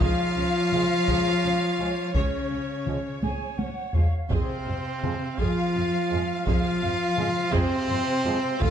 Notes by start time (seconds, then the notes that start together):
0.00 C#2 F3 F4 G#4 C#5 F5, taiko
0.36 C#2 C#4
0.72 C#2 F3 G#3 F4, taiko mid
1.08 C#2 G#4, taiko
1.43 C#2 C#4
1.79 C#2 F3 G#3 F4
2.14 C#2 C#3 C#4 G#4 C#5, taiko
2.50 C#2 C#4
2.86 C#2 F3 G#3 F4, taiko mid
3.22 C#2 G#4 G#5, taiko high
3.58 C#2 C#4 F#5, taiko high
3.93 C#2 F3 G#3 F4 F5, taiko low
4.30 F2 C3 C4 G#4 C5 F5, taiko
4.66 F2 C4
5.02 F2 F3 G#3 F4, taiko mid
5.38 F2 F3 F4 G#4 F5, taiko
5.75 F2 C4
6.10 F2 F3 G#3 F4
6.45 F2 F3 F4 G#4 F5, taiko
6.82 F2 C4
7.17 F2 F3 G#3 F4, taiko mid
7.52 F2 C3 C4 G#4 C5, taiko
7.88 F2 C4
8.25 F2 F3 G#3 F4
8.61 D2 F3 F4 A4 F5, taiko